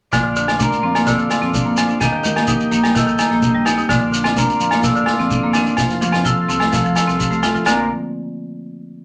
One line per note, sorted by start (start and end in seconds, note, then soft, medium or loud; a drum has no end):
0.12 0.70 A#1 medium
0.12 1.99 A#2 medium
0.12 0.20 D3 medium
0.12 1.99 D5 medium
0.12 1.99 F5 medium
0.12 1.99 C6 medium
0.12 kick medium
0.12 snare medium
0.12 muted conga soft
0.12 low agogo medium
0.12 shekere medium
0.24 0.31 D3 medium
0.36 0.43 D3 medium
0.36 1.53 D4 medium
0.36 muted conga soft
0.36 shekere medium
0.48 snare medium
0.48 low agogo medium
0.48 shekere soft
0.59 0.67 D4 medium
0.59 1.07 A#4 medium
0.59 kick medium
0.59 high conga medium
0.59 shekere medium
0.73 shekere soft
0.83 1.31 F2 medium
0.83 0.90 C4 medium
0.83 1.30 F4 medium
0.95 1.02 A#3 medium
0.95 snare medium
0.95 low agogo medium
0.95 shekere soft
1.06 1.14 D3 medium
1.06 1.99 A4 medium
1.06 kick medium
1.06 snare medium
1.06 muted conga soft
1.06 shekere medium
1.18 1.25 D3 medium
1.18 shekere soft
1.30 1.99 F4 medium
1.30 snare medium
1.30 low agogo medium
1.30 shekere medium
1.41 1.90 F2 medium
1.41 1.49 C4 medium
1.41 snare soft
1.54 1.99 D4 medium
1.54 kick medium
1.54 muted conga soft
1.54 high conga medium
1.54 shekere medium
1.65 1.72 A#3 medium
1.77 2.00 F3 medium
1.77 1.84 D4 medium
1.77 snare medium
1.77 low agogo medium
1.77 shekere medium
1.89 1.96 D4 medium
1.89 shekere soft
2.00 2.58 D#2 medium
2.00 3.42 D#3 medium
2.00 2.08 D#3 medium
2.00 3.87 G3 medium
2.00 2.25 A#3 medium
2.00 2.71 D#4 medium
2.00 2.48 G4 medium
2.00 3.88 D#5 medium
2.00 3.87 G5 medium
2.00 kick medium
2.00 snare medium
2.00 muted conga soft
2.00 low agogo medium
2.00 shekere loud
2.12 2.19 D#3 medium
2.24 2.31 D#3 medium
2.24 4.13 A#3 medium
2.24 muted conga soft
2.24 high conga medium
2.24 shekere medium
2.36 2.43 A#3 medium
2.36 snare medium
2.36 low agogo medium
2.36 shekere soft
2.47 2.55 D#4 medium
2.47 2.96 G4 medium
2.47 kick medium
2.47 low conga medium
2.47 shekere medium
2.60 shekere soft
2.71 3.20 A#1 medium
2.71 2.79 A#3 medium
2.71 3.18 D#4 medium
2.71 low conga medium
2.71 shekere medium
2.83 2.90 G3 medium
2.83 snare medium
2.83 low agogo medium
2.83 shekere soft
2.95 3.02 D#3 medium
2.95 3.88 A4 medium
2.95 kick medium
2.95 snare medium
2.95 shekere medium
3.07 3.14 D#3 medium
3.07 shekere soft
3.18 3.87 D#4 medium
3.18 snare medium
3.18 low agogo medium
3.18 shekere medium
3.31 3.79 A#1 medium
3.31 3.38 A#3 medium
3.31 snare soft
3.42 3.66 D3 medium
3.42 kick medium
3.42 muted conga soft
3.42 high conga medium
3.42 shekere loud
3.54 3.61 G3 medium
3.65 3.91 C3 medium
3.65 3.72 D#4 medium
3.65 snare medium
3.65 high conga medium
3.65 low agogo medium
3.65 shekere medium
3.78 3.85 D#4 medium
3.78 shekere soft
3.89 4.47 A#1 loud
3.89 5.75 A#2 medium
3.89 3.96 D3 medium
3.89 5.77 D5 medium
3.89 5.77 F5 medium
3.89 5.77 C6 medium
3.89 kick medium
3.89 snare medium
3.89 low agogo medium
3.89 shekere loud
4.01 4.08 D3 medium
4.12 4.20 D3 medium
4.12 5.76 D4 medium
4.12 muted conga soft
4.12 shekere medium
4.24 4.31 C4 medium
4.24 snare medium
4.24 low agogo medium
4.24 shekere soft
4.36 4.44 D4 medium
4.36 4.84 A#4 medium
4.36 kick medium
4.36 snare soft
4.36 high conga medium
4.36 shekere medium
4.49 shekere soft
4.60 5.08 F2 medium
4.60 4.67 C4 medium
4.60 5.07 F4 medium
4.60 shekere medium
4.71 4.78 A#3 medium
4.71 snare medium
4.71 low agogo medium
4.71 shekere soft
4.83 4.91 D3 medium
4.83 5.75 A4 medium
4.83 kick medium
4.83 snare medium
4.83 muted conga soft
4.83 shekere medium
4.95 5.02 D3 medium
4.95 shekere soft
5.06 6.02 F4 medium
5.06 snare medium
5.06 high conga medium
5.06 low agogo medium
5.19 5.67 F2 medium
5.19 5.26 C4 medium
5.19 snare soft
5.30 5.53 D3 medium
5.30 kick medium
5.30 muted conga soft
5.30 high conga medium
5.30 shekere loud
5.43 5.50 A#3 medium
5.53 5.78 D#3 medium
5.53 5.61 D4 medium
5.53 snare medium
5.53 low agogo medium
5.53 shekere medium
5.66 5.73 D4 medium
5.66 shekere soft
5.77 6.35 F1 medium
5.77 7.18 F3 medium
5.77 5.85 F3 medium
5.77 7.65 F5 medium
5.77 7.65 A5 medium
5.77 7.65 C6 medium
5.77 kick medium
5.77 snare medium
5.77 low agogo medium
5.77 shekere loud
5.90 snare soft
5.90 shekere soft
6.01 6.08 F3 medium
6.01 7.64 F4 medium
6.01 muted conga soft
6.01 high conga medium
6.01 shekere medium
6.12 6.20 C4 medium
6.12 snare medium
6.12 low agogo medium
6.12 shekere soft
6.25 6.32 F4 medium
6.25 6.49 A4 medium
6.25 kick medium
6.25 low conga medium
6.25 shekere medium
6.49 6.96 C2 medium
6.49 6.55 C4 medium
6.49 6.72 A4 medium
6.49 low conga medium
6.49 shekere medium
6.60 6.67 A3 medium
6.60 snare medium
6.60 low agogo medium
6.60 shekere soft
6.72 6.79 F3 medium
6.72 6.95 A4 medium
6.72 kick medium
6.72 snare medium
6.72 shekere medium
6.84 6.91 F3 medium
6.84 shekere soft
6.96 7.64 A4 medium
6.96 snare medium
6.96 low agogo medium
6.96 shekere medium
7.07 7.55 C2 medium
7.07 7.14 C4 medium
7.07 snare soft
7.07 shekere soft
7.19 7.43 G3 medium
7.19 kick medium
7.19 high conga medium
7.19 shekere medium
7.31 7.38 A3 medium
7.31 high conga medium
7.31 shekere soft
7.43 7.67 A3 medium
7.43 7.50 F4 medium
7.43 snare medium
7.43 low conga medium
7.43 low agogo medium
7.43 shekere medium
7.55 7.62 F4 medium
7.55 low conga medium
7.55 shekere soft
7.66 7.89 A#1 medium
7.66 7.87 A#2 medium
7.66 7.89 D3 medium
7.66 7.88 F3 medium
7.66 7.78 A#3 medium
7.66 7.88 C4 medium
7.66 7.89 D4 medium
7.66 7.89 F4 medium
7.66 7.89 A#4 medium
7.66 7.89 C5 medium
7.66 7.89 D5 medium
7.66 snare medium
7.66 muted conga medium
7.66 low agogo medium
7.66 shekere medium